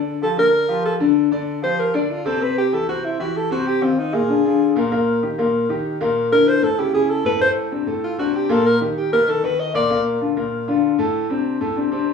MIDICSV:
0, 0, Header, 1, 3, 480
1, 0, Start_track
1, 0, Key_signature, -2, "minor"
1, 0, Tempo, 312175
1, 1782, Time_signature, 4, 2, 24, 8
1, 18659, End_track
2, 0, Start_track
2, 0, Title_t, "Alto saxophone"
2, 0, Program_c, 0, 65
2, 356, Note_on_c, 0, 69, 93
2, 571, Note_off_c, 0, 69, 0
2, 593, Note_on_c, 0, 70, 107
2, 1258, Note_off_c, 0, 70, 0
2, 1312, Note_on_c, 0, 69, 76
2, 1453, Note_off_c, 0, 69, 0
2, 2518, Note_on_c, 0, 72, 100
2, 2760, Note_on_c, 0, 70, 91
2, 2783, Note_off_c, 0, 72, 0
2, 3004, Note_on_c, 0, 62, 74
2, 3027, Note_off_c, 0, 70, 0
2, 3246, Note_on_c, 0, 65, 84
2, 3269, Note_off_c, 0, 62, 0
2, 3473, Note_on_c, 0, 69, 94
2, 3496, Note_off_c, 0, 65, 0
2, 3724, Note_on_c, 0, 71, 105
2, 3747, Note_off_c, 0, 69, 0
2, 3957, Note_off_c, 0, 71, 0
2, 3964, Note_on_c, 0, 67, 99
2, 4212, Note_on_c, 0, 69, 90
2, 4235, Note_off_c, 0, 67, 0
2, 4432, Note_off_c, 0, 69, 0
2, 4442, Note_on_c, 0, 66, 89
2, 4683, Note_on_c, 0, 64, 78
2, 4706, Note_off_c, 0, 66, 0
2, 4912, Note_off_c, 0, 64, 0
2, 4921, Note_on_c, 0, 66, 86
2, 5177, Note_on_c, 0, 69, 89
2, 5200, Note_off_c, 0, 66, 0
2, 5400, Note_off_c, 0, 69, 0
2, 5409, Note_on_c, 0, 66, 94
2, 5645, Note_on_c, 0, 67, 105
2, 5668, Note_off_c, 0, 66, 0
2, 5884, Note_on_c, 0, 60, 83
2, 5907, Note_off_c, 0, 67, 0
2, 6130, Note_on_c, 0, 63, 88
2, 6153, Note_off_c, 0, 60, 0
2, 6363, Note_on_c, 0, 68, 89
2, 6386, Note_off_c, 0, 63, 0
2, 7439, Note_off_c, 0, 68, 0
2, 9724, Note_on_c, 0, 70, 107
2, 9962, Note_on_c, 0, 72, 102
2, 9985, Note_off_c, 0, 70, 0
2, 10199, Note_on_c, 0, 69, 90
2, 10222, Note_off_c, 0, 72, 0
2, 10451, Note_on_c, 0, 67, 83
2, 10474, Note_off_c, 0, 69, 0
2, 10668, Note_off_c, 0, 67, 0
2, 10677, Note_on_c, 0, 68, 91
2, 10921, Note_on_c, 0, 69, 84
2, 10944, Note_off_c, 0, 68, 0
2, 11148, Note_off_c, 0, 69, 0
2, 11158, Note_on_c, 0, 71, 100
2, 11377, Note_off_c, 0, 71, 0
2, 11398, Note_on_c, 0, 72, 104
2, 11539, Note_off_c, 0, 72, 0
2, 12361, Note_on_c, 0, 65, 77
2, 12578, Note_off_c, 0, 65, 0
2, 12596, Note_on_c, 0, 66, 89
2, 12848, Note_on_c, 0, 67, 79
2, 12871, Note_off_c, 0, 66, 0
2, 13079, Note_on_c, 0, 69, 92
2, 13102, Note_off_c, 0, 67, 0
2, 13319, Note_on_c, 0, 70, 105
2, 13342, Note_off_c, 0, 69, 0
2, 13552, Note_off_c, 0, 70, 0
2, 13559, Note_on_c, 0, 62, 55
2, 13800, Note_on_c, 0, 67, 81
2, 13805, Note_off_c, 0, 62, 0
2, 14026, Note_off_c, 0, 67, 0
2, 14036, Note_on_c, 0, 70, 108
2, 14285, Note_on_c, 0, 69, 96
2, 14308, Note_off_c, 0, 70, 0
2, 14518, Note_on_c, 0, 71, 97
2, 14541, Note_off_c, 0, 69, 0
2, 14755, Note_on_c, 0, 75, 90
2, 14778, Note_off_c, 0, 71, 0
2, 14983, Note_off_c, 0, 75, 0
2, 14992, Note_on_c, 0, 74, 96
2, 15432, Note_off_c, 0, 74, 0
2, 18659, End_track
3, 0, Start_track
3, 0, Title_t, "Grand piano"
3, 0, Program_c, 1, 0
3, 0, Note_on_c, 1, 50, 85
3, 0, Note_on_c, 1, 62, 77
3, 0, Note_on_c, 1, 74, 85
3, 245, Note_off_c, 1, 50, 0
3, 248, Note_off_c, 1, 62, 0
3, 251, Note_off_c, 1, 74, 0
3, 333, Note_on_c, 1, 53, 72
3, 340, Note_on_c, 1, 65, 68
3, 343, Note_on_c, 1, 67, 69
3, 532, Note_off_c, 1, 53, 0
3, 536, Note_off_c, 1, 65, 0
3, 538, Note_off_c, 1, 67, 0
3, 573, Note_on_c, 1, 50, 81
3, 576, Note_on_c, 1, 62, 83
3, 584, Note_on_c, 1, 74, 71
3, 970, Note_off_c, 1, 50, 0
3, 972, Note_off_c, 1, 62, 0
3, 976, Note_off_c, 1, 74, 0
3, 1050, Note_on_c, 1, 53, 77
3, 1056, Note_on_c, 1, 65, 87
3, 1059, Note_on_c, 1, 67, 74
3, 1449, Note_off_c, 1, 53, 0
3, 1452, Note_off_c, 1, 65, 0
3, 1454, Note_off_c, 1, 67, 0
3, 1541, Note_on_c, 1, 50, 100
3, 1543, Note_on_c, 1, 62, 87
3, 1546, Note_on_c, 1, 74, 92
3, 1936, Note_off_c, 1, 50, 0
3, 1937, Note_off_c, 1, 62, 0
3, 1939, Note_off_c, 1, 74, 0
3, 2022, Note_on_c, 1, 50, 94
3, 2025, Note_on_c, 1, 62, 83
3, 2032, Note_on_c, 1, 74, 97
3, 2417, Note_off_c, 1, 50, 0
3, 2419, Note_off_c, 1, 62, 0
3, 2423, Note_off_c, 1, 74, 0
3, 2497, Note_on_c, 1, 53, 72
3, 2501, Note_on_c, 1, 65, 73
3, 2504, Note_on_c, 1, 67, 72
3, 2895, Note_off_c, 1, 53, 0
3, 2897, Note_off_c, 1, 65, 0
3, 2899, Note_off_c, 1, 67, 0
3, 2984, Note_on_c, 1, 50, 85
3, 2987, Note_on_c, 1, 62, 100
3, 2994, Note_on_c, 1, 74, 93
3, 3379, Note_off_c, 1, 50, 0
3, 3381, Note_off_c, 1, 62, 0
3, 3385, Note_off_c, 1, 74, 0
3, 3467, Note_on_c, 1, 48, 99
3, 3470, Note_on_c, 1, 60, 95
3, 3473, Note_on_c, 1, 72, 90
3, 3665, Note_off_c, 1, 48, 0
3, 3666, Note_off_c, 1, 60, 0
3, 3668, Note_off_c, 1, 72, 0
3, 3704, Note_on_c, 1, 48, 86
3, 3709, Note_on_c, 1, 60, 80
3, 3715, Note_on_c, 1, 72, 77
3, 4100, Note_off_c, 1, 48, 0
3, 4104, Note_off_c, 1, 60, 0
3, 4107, Note_off_c, 1, 72, 0
3, 4185, Note_on_c, 1, 52, 63
3, 4187, Note_on_c, 1, 64, 71
3, 4193, Note_on_c, 1, 67, 67
3, 4384, Note_off_c, 1, 52, 0
3, 4385, Note_off_c, 1, 64, 0
3, 4389, Note_off_c, 1, 67, 0
3, 4430, Note_on_c, 1, 48, 76
3, 4434, Note_on_c, 1, 60, 72
3, 4438, Note_on_c, 1, 72, 77
3, 4825, Note_off_c, 1, 48, 0
3, 4827, Note_off_c, 1, 60, 0
3, 4830, Note_off_c, 1, 72, 0
3, 4910, Note_on_c, 1, 52, 82
3, 4916, Note_on_c, 1, 64, 75
3, 4918, Note_on_c, 1, 67, 76
3, 5305, Note_off_c, 1, 52, 0
3, 5308, Note_off_c, 1, 64, 0
3, 5310, Note_off_c, 1, 67, 0
3, 5389, Note_on_c, 1, 48, 93
3, 5396, Note_on_c, 1, 60, 89
3, 5397, Note_on_c, 1, 72, 86
3, 5785, Note_off_c, 1, 48, 0
3, 5789, Note_off_c, 1, 60, 0
3, 5790, Note_off_c, 1, 72, 0
3, 5873, Note_on_c, 1, 51, 80
3, 5878, Note_on_c, 1, 63, 76
3, 5884, Note_on_c, 1, 65, 72
3, 6267, Note_off_c, 1, 51, 0
3, 6270, Note_off_c, 1, 63, 0
3, 6274, Note_off_c, 1, 65, 0
3, 6354, Note_on_c, 1, 46, 77
3, 6358, Note_on_c, 1, 58, 82
3, 6365, Note_on_c, 1, 70, 80
3, 6551, Note_off_c, 1, 46, 0
3, 6553, Note_off_c, 1, 58, 0
3, 6558, Note_off_c, 1, 70, 0
3, 6590, Note_on_c, 1, 50, 69
3, 6596, Note_on_c, 1, 62, 72
3, 6600, Note_on_c, 1, 65, 63
3, 6789, Note_off_c, 1, 50, 0
3, 6792, Note_off_c, 1, 62, 0
3, 6795, Note_off_c, 1, 65, 0
3, 6837, Note_on_c, 1, 50, 78
3, 6842, Note_on_c, 1, 62, 80
3, 6845, Note_on_c, 1, 65, 77
3, 7230, Note_off_c, 1, 50, 0
3, 7233, Note_off_c, 1, 62, 0
3, 7235, Note_off_c, 1, 65, 0
3, 7314, Note_on_c, 1, 46, 93
3, 7323, Note_on_c, 1, 58, 87
3, 7327, Note_on_c, 1, 70, 93
3, 7511, Note_off_c, 1, 46, 0
3, 7517, Note_off_c, 1, 58, 0
3, 7519, Note_off_c, 1, 70, 0
3, 7556, Note_on_c, 1, 46, 77
3, 7562, Note_on_c, 1, 58, 91
3, 7564, Note_on_c, 1, 70, 91
3, 7950, Note_off_c, 1, 46, 0
3, 7953, Note_off_c, 1, 58, 0
3, 7954, Note_off_c, 1, 70, 0
3, 8034, Note_on_c, 1, 51, 68
3, 8035, Note_on_c, 1, 63, 72
3, 8041, Note_on_c, 1, 67, 73
3, 8231, Note_off_c, 1, 51, 0
3, 8232, Note_off_c, 1, 63, 0
3, 8235, Note_off_c, 1, 67, 0
3, 8275, Note_on_c, 1, 46, 78
3, 8280, Note_on_c, 1, 58, 85
3, 8286, Note_on_c, 1, 70, 84
3, 8668, Note_off_c, 1, 46, 0
3, 8671, Note_off_c, 1, 58, 0
3, 8675, Note_off_c, 1, 70, 0
3, 8751, Note_on_c, 1, 51, 82
3, 8754, Note_on_c, 1, 63, 83
3, 8761, Note_on_c, 1, 67, 81
3, 9146, Note_off_c, 1, 51, 0
3, 9148, Note_off_c, 1, 63, 0
3, 9152, Note_off_c, 1, 67, 0
3, 9235, Note_on_c, 1, 46, 92
3, 9235, Note_on_c, 1, 58, 94
3, 9241, Note_on_c, 1, 70, 91
3, 9628, Note_off_c, 1, 46, 0
3, 9628, Note_off_c, 1, 58, 0
3, 9632, Note_off_c, 1, 70, 0
3, 9708, Note_on_c, 1, 50, 70
3, 9713, Note_on_c, 1, 62, 78
3, 9716, Note_on_c, 1, 64, 74
3, 10103, Note_off_c, 1, 50, 0
3, 10106, Note_off_c, 1, 62, 0
3, 10108, Note_off_c, 1, 64, 0
3, 10182, Note_on_c, 1, 45, 70
3, 10186, Note_on_c, 1, 57, 77
3, 10189, Note_on_c, 1, 69, 75
3, 10383, Note_off_c, 1, 45, 0
3, 10385, Note_off_c, 1, 57, 0
3, 10387, Note_off_c, 1, 69, 0
3, 10418, Note_on_c, 1, 49, 63
3, 10422, Note_on_c, 1, 61, 73
3, 10427, Note_on_c, 1, 64, 70
3, 10621, Note_off_c, 1, 49, 0
3, 10623, Note_off_c, 1, 61, 0
3, 10626, Note_off_c, 1, 64, 0
3, 10661, Note_on_c, 1, 49, 77
3, 10666, Note_on_c, 1, 61, 82
3, 10670, Note_on_c, 1, 64, 82
3, 11059, Note_off_c, 1, 49, 0
3, 11061, Note_off_c, 1, 61, 0
3, 11064, Note_off_c, 1, 64, 0
3, 11142, Note_on_c, 1, 45, 93
3, 11145, Note_on_c, 1, 57, 92
3, 11150, Note_on_c, 1, 69, 95
3, 11342, Note_off_c, 1, 45, 0
3, 11344, Note_off_c, 1, 57, 0
3, 11347, Note_off_c, 1, 69, 0
3, 11373, Note_on_c, 1, 45, 90
3, 11381, Note_on_c, 1, 57, 82
3, 11383, Note_on_c, 1, 69, 88
3, 11773, Note_off_c, 1, 45, 0
3, 11778, Note_off_c, 1, 57, 0
3, 11779, Note_off_c, 1, 69, 0
3, 11861, Note_on_c, 1, 48, 75
3, 11865, Note_on_c, 1, 60, 75
3, 11872, Note_on_c, 1, 62, 68
3, 12061, Note_off_c, 1, 48, 0
3, 12063, Note_off_c, 1, 60, 0
3, 12067, Note_off_c, 1, 62, 0
3, 12094, Note_on_c, 1, 45, 75
3, 12098, Note_on_c, 1, 57, 75
3, 12104, Note_on_c, 1, 69, 82
3, 12493, Note_off_c, 1, 45, 0
3, 12495, Note_off_c, 1, 57, 0
3, 12499, Note_off_c, 1, 69, 0
3, 12579, Note_on_c, 1, 48, 81
3, 12583, Note_on_c, 1, 60, 77
3, 12586, Note_on_c, 1, 62, 87
3, 12975, Note_off_c, 1, 48, 0
3, 12977, Note_off_c, 1, 60, 0
3, 12979, Note_off_c, 1, 62, 0
3, 13054, Note_on_c, 1, 46, 99
3, 13059, Note_on_c, 1, 58, 101
3, 13064, Note_on_c, 1, 70, 93
3, 13452, Note_off_c, 1, 46, 0
3, 13454, Note_off_c, 1, 58, 0
3, 13458, Note_off_c, 1, 70, 0
3, 13539, Note_on_c, 1, 51, 83
3, 13546, Note_on_c, 1, 63, 82
3, 13548, Note_on_c, 1, 67, 69
3, 13934, Note_off_c, 1, 51, 0
3, 13938, Note_off_c, 1, 63, 0
3, 13939, Note_off_c, 1, 67, 0
3, 14026, Note_on_c, 1, 47, 78
3, 14033, Note_on_c, 1, 59, 71
3, 14036, Note_on_c, 1, 71, 85
3, 14221, Note_off_c, 1, 47, 0
3, 14225, Note_off_c, 1, 59, 0
3, 14227, Note_off_c, 1, 71, 0
3, 14263, Note_on_c, 1, 51, 74
3, 14267, Note_on_c, 1, 63, 75
3, 14273, Note_on_c, 1, 66, 69
3, 14459, Note_off_c, 1, 51, 0
3, 14462, Note_off_c, 1, 63, 0
3, 14465, Note_off_c, 1, 66, 0
3, 14504, Note_on_c, 1, 51, 88
3, 14510, Note_on_c, 1, 63, 86
3, 14513, Note_on_c, 1, 66, 81
3, 14896, Note_off_c, 1, 51, 0
3, 14899, Note_off_c, 1, 63, 0
3, 14901, Note_off_c, 1, 66, 0
3, 14978, Note_on_c, 1, 46, 93
3, 14984, Note_on_c, 1, 58, 94
3, 14988, Note_on_c, 1, 70, 94
3, 15175, Note_off_c, 1, 46, 0
3, 15179, Note_off_c, 1, 58, 0
3, 15181, Note_off_c, 1, 70, 0
3, 15224, Note_on_c, 1, 46, 83
3, 15226, Note_on_c, 1, 58, 89
3, 15228, Note_on_c, 1, 70, 87
3, 15615, Note_off_c, 1, 46, 0
3, 15616, Note_off_c, 1, 58, 0
3, 15617, Note_off_c, 1, 70, 0
3, 15698, Note_on_c, 1, 50, 71
3, 15705, Note_on_c, 1, 62, 67
3, 15709, Note_on_c, 1, 65, 73
3, 15894, Note_off_c, 1, 50, 0
3, 15899, Note_off_c, 1, 62, 0
3, 15901, Note_off_c, 1, 65, 0
3, 15936, Note_on_c, 1, 46, 72
3, 15943, Note_on_c, 1, 58, 77
3, 15944, Note_on_c, 1, 70, 83
3, 16329, Note_off_c, 1, 46, 0
3, 16334, Note_off_c, 1, 58, 0
3, 16334, Note_off_c, 1, 70, 0
3, 16415, Note_on_c, 1, 50, 84
3, 16420, Note_on_c, 1, 62, 82
3, 16423, Note_on_c, 1, 65, 85
3, 16808, Note_off_c, 1, 50, 0
3, 16811, Note_off_c, 1, 62, 0
3, 16813, Note_off_c, 1, 65, 0
3, 16890, Note_on_c, 1, 45, 92
3, 16894, Note_on_c, 1, 57, 95
3, 16899, Note_on_c, 1, 69, 95
3, 17285, Note_off_c, 1, 45, 0
3, 17287, Note_off_c, 1, 57, 0
3, 17290, Note_off_c, 1, 69, 0
3, 17367, Note_on_c, 1, 48, 77
3, 17373, Note_on_c, 1, 60, 82
3, 17377, Note_on_c, 1, 62, 71
3, 17763, Note_off_c, 1, 48, 0
3, 17766, Note_off_c, 1, 60, 0
3, 17768, Note_off_c, 1, 62, 0
3, 17843, Note_on_c, 1, 45, 77
3, 17849, Note_on_c, 1, 57, 91
3, 17853, Note_on_c, 1, 69, 83
3, 18043, Note_off_c, 1, 45, 0
3, 18047, Note_off_c, 1, 57, 0
3, 18049, Note_off_c, 1, 69, 0
3, 18082, Note_on_c, 1, 48, 70
3, 18089, Note_on_c, 1, 60, 72
3, 18091, Note_on_c, 1, 62, 74
3, 18282, Note_off_c, 1, 48, 0
3, 18287, Note_off_c, 1, 60, 0
3, 18288, Note_off_c, 1, 62, 0
3, 18322, Note_on_c, 1, 48, 88
3, 18325, Note_on_c, 1, 60, 83
3, 18332, Note_on_c, 1, 62, 80
3, 18659, Note_off_c, 1, 48, 0
3, 18659, Note_off_c, 1, 60, 0
3, 18659, Note_off_c, 1, 62, 0
3, 18659, End_track
0, 0, End_of_file